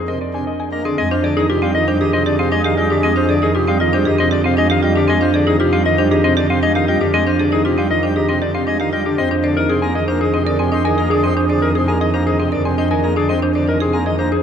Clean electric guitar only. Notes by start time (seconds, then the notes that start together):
Already playing: G#4
0.08 D#5
0.21 D5
0.34 G#5
0.47 D#5
0.60 G#5
0.72 D#5
0.85 G#4
0.98 D#5
1.11 C5
1.24 D5
1.37 G#4
1.50 G4
1.63 F5
1.75 D#5
1.88 C5
2.01 G4
2.14 D#5
2.26 D5
2.39 F5
2.52 D#5
2.65 F5
2.78 D#5
2.92 G4
3.04 D#5
3.17 C5
3.30 D5
3.43 G#4
3.56 G4
3.68 F5
3.81 D#5
3.94 C5
4.07 G4
4.20 D#5
4.32 D5
4.46 F5
4.58 D#5
4.71 F5
4.84 D#5
4.97 G4
5.09 D#5
5.22 C5
5.35 D5
5.47 G#4
5.60 G4
5.73 F5
5.86 D#5
5.98 C5
6.11 G4
6.24 D#5
6.37 D5
6.50 F5
6.63 D#5
6.76 F5
6.89 D#5
7.01 G4
7.14 D#5
7.27 C5
7.40 D5
7.53 G#4
7.66 G4
7.79 F5
7.91 D#5
8.04 C5
8.17 G4
8.29 D#5
8.42 D5
8.55 F5
8.68 D#5
8.81 F5
8.93 D#5
9.06 G4
9.18 D#5
9.31 C5
9.44 D5
9.57 A#4
9.69 G#4
9.82 G#5
9.95 D#5
10.08 C5
10.21 G#4
10.34 D#5
10.46 D5
10.60 G#5
10.72 D#5
10.85 G#5
10.97 D#5
11.10 G#4
11.23 D#5
11.37 C5
11.49 D5
11.62 A#4
11.75 G#4
11.88 G#5
12.01 D#5
12.14 C5
12.27 G#4
12.40 D#5
12.53 D5
12.65 G#5
12.78 D#5
12.91 G#5
13.04 D#5
13.17 G#4
13.30 D#5
13.43 C5
13.56 D5
13.68 A#4
13.82 G#4
13.93 G#5
14.07 D#5
14.19 C5
14.32 G#4